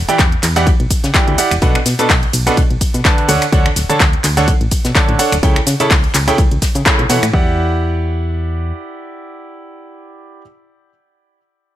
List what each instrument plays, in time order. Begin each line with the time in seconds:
0.09 grand piano E3 E4 G4 D5 G5, closed hi-hat, shaker
0.19 fm bass E2, kick, snare, clap, closed hi-hat, shaker
0.32 closed hi-hat
0.43 fm bass E2, clap, closed hi-hat, open hi-hat, ride, shaker
0.56 grand piano E3 E4 G4 D5 F#5, snare, closed hi-hat, shaker
0.67 kick, closed hi-hat, shaker
0.80 fm bass B1, closed hi-hat
0.91 kick, closed hi-hat, open hi-hat, ride, shaker
1.04 fm bass C#3, snare, closed hi-hat, shaker
1.14 grand piano E3 E4 G4 D5 G5, kick, snare, clap, closed hi-hat, shaker
1.28 fm bass D2, closed hi-hat
1.38 grand piano E4 G4 D5 F#5, closed hi-hat, open hi-hat, ride, shaker
1.51 fm bass E1, finger snap, closed hi-hat, shaker
1.62 fm bass B1, grand piano B2 D4 A4 B4 F#5, kick, closed hi-hat, shaker
1.75 finger snap, closed hi-hat
1.86 fm bass B2, snare, closed hi-hat, open hi-hat, ride, shaker
1.99 grand piano B2 D4 A4 B4 A5, snare, closed hi-hat, shaker
2.10 fm bass B1, kick, snare, clap, closed hi-hat, open hi-hat, shaker
2.23 closed hi-hat
2.33 fm bass B1, closed hi-hat, open hi-hat, ride, shaker
2.46 grand piano B2 D4 A4 B4 F#5, snare, closed hi-hat, shaker
2.57 fm bass B1, kick, closed hi-hat, shaker
2.71 fm bass B1, closed hi-hat
2.81 kick, closed hi-hat, open hi-hat, ride, shaker
2.94 fm bass B2, closed hi-hat, shaker
3.05 grand piano D3 D4 A4 B4 A5, kick, snare, clap, closed hi-hat, shaker
3.18 closed hi-hat
3.28 fm bass D2, grand piano D3 D4 A4 C#5 F#5, closed hi-hat, open hi-hat, ride, shaker
3.42 finger snap, closed hi-hat, shaker
3.52 fm bass D2, grand piano D3 D4 A4 C#5 F#5, kick, closed hi-hat, shaker
3.66 finger snap, closed hi-hat
3.76 fm bass D1, snare, closed hi-hat, open hi-hat, ride, shaker
3.90 grand piano D3 D4 A4 C#5 A5, closed hi-hat, shaker
4.00 fm bass D2, kick, snare, clap, closed hi-hat, shaker
4.13 closed hi-hat
4.24 fm bass D2, clap, closed hi-hat, open hi-hat, ride, shaker
4.37 grand piano D3 D4 A4 C#5 F#5, snare, closed hi-hat, shaker
4.48 kick, closed hi-hat, shaker
4.61 fm bass A1, closed hi-hat
4.71 kick, closed hi-hat, open hi-hat, ride, shaker
4.85 fm bass B2, snare, closed hi-hat, shaker
4.95 grand piano D3 D4 A4 C#5 A5, kick, snare, clap, closed hi-hat, shaker
5.09 fm bass A1, closed hi-hat
5.19 grand piano D4 A4 C#5 F#5, closed hi-hat, open hi-hat, ride, shaker
5.32 fm bass D1, finger snap, closed hi-hat, shaker
5.43 fm bass C#2, grand piano C#3 E4 A4 C#5 G5, kick, closed hi-hat, shaker
5.56 finger snap, closed hi-hat
5.67 fm bass C#3, snare, closed hi-hat, open hi-hat, ride, shaker
5.80 grand piano C#3 E4 A4 C#5 A5, snare, closed hi-hat, shaker
5.90 fm bass C#2, kick, snare, clap, closed hi-hat, open hi-hat, shaker
6.04 closed hi-hat
6.14 fm bass C#2, clap, closed hi-hat, open hi-hat, ride, shaker
6.27 grand piano C#3 E4 A4 C#5 G5, snare, closed hi-hat, shaker
6.38 fm bass C#2, kick, closed hi-hat, shaker
6.51 fm bass C#2, closed hi-hat
6.62 kick, snare, closed hi-hat, open hi-hat, ride, shaker
6.75 fm bass C#3, closed hi-hat, shaker
6.86 grand piano C#3 E4 A4 C#5 B5, kick, snare, clap, closed hi-hat, shaker
6.99 fm bass B1, closed hi-hat
7.09 fm bass B2, grand piano E3 E4 A4 C#5 F#5, snare, closed hi-hat, open hi-hat, ride, shaker
7.23 fm bass A2, finger snap, closed hi-hat, shaker
7.33 fm bass E2, grand piano E4 G4 D5 F#5, kick